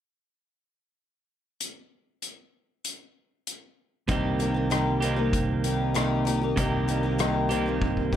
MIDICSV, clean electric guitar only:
0, 0, Header, 1, 2, 480
1, 0, Start_track
1, 0, Key_signature, -3, "minor"
1, 0, Tempo, 621762
1, 1237, Time_signature, 4, 2, 24, 8
1, 6301, End_track
2, 0, Start_track
2, 0, Title_t, "Clean electric guitar"
2, 0, Program_c, 0, 27
2, 3148, Note_on_c, 0, 48, 66
2, 3158, Note_on_c, 0, 51, 69
2, 3164, Note_on_c, 0, 58, 70
2, 3170, Note_on_c, 0, 60, 68
2, 3178, Note_on_c, 0, 67, 82
2, 3860, Note_off_c, 0, 67, 0
2, 3863, Note_off_c, 0, 51, 0
2, 3864, Note_on_c, 0, 67, 68
2, 3870, Note_off_c, 0, 60, 0
2, 3873, Note_on_c, 0, 60, 62
2, 3876, Note_off_c, 0, 58, 0
2, 3879, Note_on_c, 0, 58, 56
2, 3889, Note_on_c, 0, 51, 56
2, 3893, Note_off_c, 0, 48, 0
2, 3896, Note_on_c, 0, 48, 53
2, 5062, Note_off_c, 0, 48, 0
2, 5065, Note_off_c, 0, 51, 0
2, 5065, Note_on_c, 0, 48, 78
2, 5074, Note_on_c, 0, 51, 72
2, 5078, Note_off_c, 0, 58, 0
2, 5081, Note_on_c, 0, 58, 86
2, 5085, Note_off_c, 0, 60, 0
2, 5088, Note_on_c, 0, 60, 75
2, 5090, Note_off_c, 0, 67, 0
2, 5093, Note_on_c, 0, 67, 85
2, 5774, Note_off_c, 0, 67, 0
2, 5775, Note_off_c, 0, 48, 0
2, 5780, Note_off_c, 0, 51, 0
2, 5783, Note_off_c, 0, 58, 0
2, 5783, Note_on_c, 0, 67, 75
2, 5784, Note_off_c, 0, 60, 0
2, 5794, Note_on_c, 0, 60, 66
2, 5802, Note_on_c, 0, 58, 62
2, 5808, Note_on_c, 0, 51, 61
2, 5816, Note_on_c, 0, 48, 57
2, 6301, Note_off_c, 0, 48, 0
2, 6301, Note_off_c, 0, 51, 0
2, 6301, Note_off_c, 0, 58, 0
2, 6301, Note_off_c, 0, 60, 0
2, 6301, Note_off_c, 0, 67, 0
2, 6301, End_track
0, 0, End_of_file